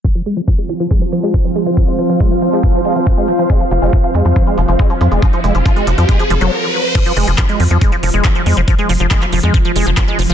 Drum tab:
CC |----------------|----------------|----------------|----------------|
HH |xxxxxxxxxxxxxxxx|xxxxxxxxxxxxxxxx|xxxxxxxxxxxxxxxx|xxxxxxxxxxxx----|
CP |----------------|----------------|----------------|----------------|
BD |o---o---o---o---|o---o---o---o---|o---o---o---o---|o---o---o-------|

CC |x---------------|----------------|
HH |xxoxxxoxxxoxxxox|xxoxxxoxxxoxxxox|
CP |----x-------x---|----xx------x---|
BD |o---o---o---o---|o---o---o---o---|